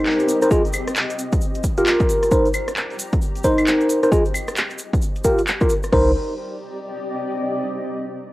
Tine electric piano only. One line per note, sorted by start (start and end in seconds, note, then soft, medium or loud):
0.00 0.39 D#4 medium
0.00 0.39 A#4 medium
0.00 0.39 C5 medium
0.42 0.49 D#4 medium
0.42 0.49 A#4 medium
0.42 0.49 C5 medium
0.51 0.61 F4 medium
0.51 0.61 G#4 medium
0.51 0.61 D#5 medium
1.78 2.29 F4 medium
1.78 2.29 G4 medium
1.78 2.29 A#4 medium
2.31 2.47 D#4 medium
2.31 2.47 A#4 medium
2.31 2.47 C5 medium
3.44 4.00 D#4 medium
3.44 4.00 A#4 medium
3.44 4.00 C5 medium
4.03 4.10 D#4 medium
4.03 4.10 A#4 medium
4.03 4.10 C5 medium
4.12 4.22 F4 medium
4.12 4.22 G#4 medium
4.12 4.22 D#5 loud
5.25 5.40 F4 medium
5.25 5.40 G4 medium
5.25 5.40 A#4 loud
5.61 5.73 F4 medium
5.61 5.73 G4 medium
5.61 5.73 A#4 medium
5.92 6.10 D#4 medium
5.92 6.10 A#4 medium
5.92 6.10 C5 loud